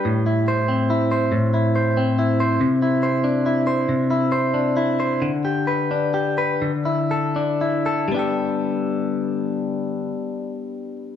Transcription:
X:1
M:6/8
L:1/16
Q:3/8=44
K:G
V:1 name="Clean electric guitar"
A,, E c C E c A,, E c C E c | C, E c D E c C, E c D E c | D, G B D G B D, E A D E A | [G,B,DGA]12 |]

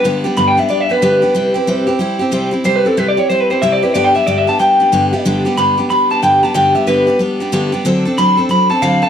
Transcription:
X:1
M:4/4
L:1/8
Q:"Swing" 1/4=185
K:G
V:1 name="Clean electric guitar"
z2 (3b g e (3d e B B2- | B4 z4 | (3c B A (3B d ^c (3=c B c (3e d B | (3d g e (3d e a g4 |
z2 b z b a g a | g e B2 z4 | z2 b z b a =f a |]
V:2 name="Steel-string acoustic guitar"
[G,,D,G,B,DG] [G,B,DG] [G,,D,G,B,DG] [G,B,DG] [G,B,DG] [G,B,DG] [G,,D,G,B,DG] [G,B,DG] | [C,G,CEG] [CEG] [C,G,CEG] [CEG] [G,CEG] [CEG] [C,G,CEG] [CEG] | [C,G,CEG] [CEG] [C,G,CEG] [CEG] [G,CEG] [CEG] [C,G,CEG] [CEG] | [G,,D,G,B,DG] [G,B,DG] [G,,D,G,B,DG] [G,B,DG] [G,B,DG] [G,B,DG] [G,,D,G,B,DG] [G,B,DG] |
[G,,D,G,B,DG] [G,B,DG] [G,,D,G,B,DG] [G,B,DG] [G,B,DG] [G,B,DG] [G,,D,G,B,DG] [G,B,DG] | [G,,D,G,B,DG] [G,B,DG] [G,,D,G,B,DG] [G,B,DG] [G,B,DG] [G,B,DG] [G,,D,G,B,DG] [G,B,DG] | [D,F,CDA] [CDA] [D,F,CDA] [CDA] [F,CDA] [CDA] [D,F,CDA] [CDA] |]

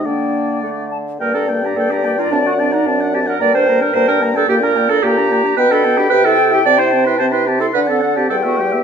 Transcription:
X:1
M:2/4
L:1/16
Q:1/4=110
K:Gm
V:1 name="Oboe"
d6 z2 | g b g b g b g b | a ^f a f a f a f | b g b g b g b g |
g b g b g b g b | [K:Ador] g b g b g e g e | a c' a c' a c' a c' | f a f a g e g e |]
V:2 name="Flute"
g4 ^f2 a2 | d8- | d8 | B8 |
d4 b4 | [K:Ador] g8- | g6 z2 | f4 g4 |]
V:3 name="Clarinet"
B,4 A,2 z2 | B A2 G A G2 F | D ^F D E D2 G B | d c2 B c B2 A |
G B2 A G4 | [K:Ador] B A2 G B A2 G | d c2 B c B G A | B A2 G A F G2 |]
V:4 name="French horn"
D4 z4 | B, D B, D B, D B, D | C D C D C D C D | B, D B, D B, D B, D |
B, D B, D B, D B, D | [K:Ador] B, D B, D G E G E | C E C E C E C E | D C D C G, B, G, B, |]
V:5 name="Bassoon" clef=bass
D,4 D,4 | G,,4 G,,4 | ^F,,4 F,,4 | G,,4 G,,4 |
B,,4 B,,4 | [K:Ador] B,,4 C,4 | C,4 C,4 | D,4 E,,4 |]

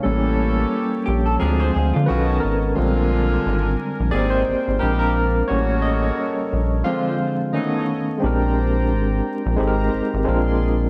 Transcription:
X:1
M:4/4
L:1/16
Q:"Swing 16ths" 1/4=88
K:Bbmix
V:1 name="Analog synth pad"
[B,G=A^c]8 [D,_A,F=c]4 [=B,^c^d=a]4 | [DBa]8 [A,cg]4 [B,Bd]4 | [G,=AB^c]8 [D,_A,F=c]4 [=B,=A^c^d]4 | [cdgb]8 [Gcb]4 [Adc']4 |]
V:2 name="Clean electric guitar"
z6 G =A B c _A F2 z3 | z16 | z16 | z16 |]
V:3 name="Tine electric piano"
_d6 z6 =B2 _B2- | B8 d c3 B B3 | ^c2 e6 f6 z2 | [A,CDGB]8 [A,CEG=AB]4 [_A,CDFB]4 |]
V:4 name="Tine electric piano"
[G,B,^C]6 z2 [F,A,=C]2 z2 [^D,^C=A]4 | [D,G,A,C]8 [B,CG]2 z2 [A,CD]2 z2 | [G,B,^C]6 z2 [F,A,=C]4 [^D,=A,^C]2 z2 | z16 |]
V:5 name="Saxophone section"
[=E,^C=A]6 z2 [F,D_A]2 z2 [^D,C^F]2 z2 | [D,CF]6 z2 [E,CA]2 z2 [G,EG]2 z2 | [^C,B,^F]6 z2 [D,=C=F]2 z2 [=A,,^F,^D]2 z2 | z16 |]
V:6 name="Analog synth bass" clef=bass
=A,,,4 z2 B,,,2 D,,2 D,, D, =B,,,2 _A,,,2 | B,,,4 A,,,2 z B,,, A,,,2 A,,, A,,, B,,,4 | =A,,,4 z2 B,,,2 z8 | B,,,4 A,,,2 z B,,, A,,,2 A,,, A,,, B,,,4 |]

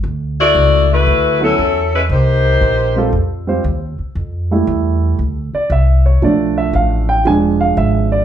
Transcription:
X:1
M:4/4
L:1/8
Q:"Swing" 1/4=116
K:Fmix
V:1 name="Grand piano"
z4 z [^F,_C=EA] z2 | z3 [G,CFA] z [G,CFc] z2 | [K:F] z4 z d e _d | d e f g ^g f e d |]
V:2 name="Grand piano"
z8 | z8 | [K:F] z [G,A,E]3 z4 | [F,A,D]4 [F,^G,D]4 |]
V:3 name="Saxophone section"
z [A,=E^Fd]2 [A,EF_c]2 [^F,^CEA]2 [_A,CE_c] | [B,EGc]4 z4 | [K:F] z8 | z8 |]
V:4 name="Upright bass" clef=bass
D,,2 ^C,,2 D,,2 =E,,2 | C,,2 B,,,2 F,,2 E,, z | [K:F] F,,2 E,,2 D,, z C,,2 | =B,,,2 A,,,2 E,,,2 ^G,,,2 |]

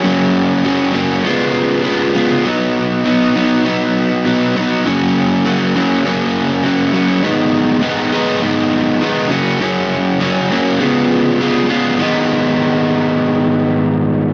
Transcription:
X:1
M:4/4
L:1/8
Q:1/4=101
K:G#m
V:1 name="Overdriven electric guitar" clef=bass
[F,,C,F,A,C]2 [F,,C,F,A,C] [F,,C,F,A,C] [C,G,B,^E]2 [C,G,B,E] [C,G,B,E] | [B,,F,B,D]2 [B,,F,B,D] [B,,F,B,D] [B,,F,B,D]2 [B,,F,B,D] [B,,F,B,D] | [F,,C,F,A,C]2 [F,,C,F,A,C] [F,,C,F,A,C] [F,,C,F,A,C]2 [F,,C,F,A,C] [F,,C,F,A,C] | [G,,D,G,B,D]2 [G,,D,G,B,D] [G,,D,G,B,D] [G,,D,G,B,D]2 [G,,D,G,B,D] [F,,C,F,A,C] |
[F,,C,F,A,C]2 [F,,C,F,A,C] [F,,C,F,A,C] [C,G,B,^E]2 [C,G,B,E] [C,G,B,E] | [G,,D,G,B,D]8 |]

